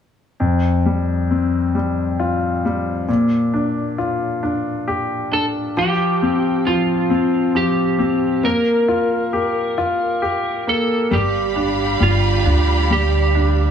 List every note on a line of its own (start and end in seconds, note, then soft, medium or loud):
0.40 3.04 F2 soft
0.86 1.73 G3 soft
1.31 3.05 C4 soft
1.75 2.64 G3 soft
2.20 3.06 F4 soft
2.65 3.08 G3 soft
3.08 5.72 A#2 soft
3.54 4.41 D4 soft
3.98 5.73 F4 soft
4.43 5.30 D4 soft
4.88 5.74 G4 soft
5.32 5.75 D4 soft
5.32 5.45 A4 medium
5.77 6.65 F3 soft
5.77 6.69 G4 medium
6.22 7.08 C4 soft
6.67 7.53 F3 soft
6.67 7.56 F4 medium
7.10 7.97 C4 soft
7.55 8.42 F3 soft
7.55 8.48 G4 medium
7.99 8.42 C4 soft
8.43 10.66 A#3 medium
8.43 10.69 A#4 medium
8.88 9.76 F4 soft
9.33 10.21 G4 soft
9.78 11.08 F4 soft
10.22 11.09 G4 soft
10.67 11.11 A#3 soft
10.67 11.14 A4 medium
11.11 11.97 G1 medium
11.11 11.99 G3 medium
11.11 13.71 G4 medium
11.11 12.02 G4 medium
11.11 13.71 D5 medium
11.11 13.71 F5 medium
11.11 13.71 B5 medium
11.56 12.44 D4 soft
12.00 12.43 G1 medium
12.00 12.89 G3 soft
12.00 12.87 F4 medium
12.45 13.71 D2 medium
12.45 13.34 D4 soft
12.90 13.71 G3 soft
12.90 13.71 G4 medium
13.35 13.71 D4 soft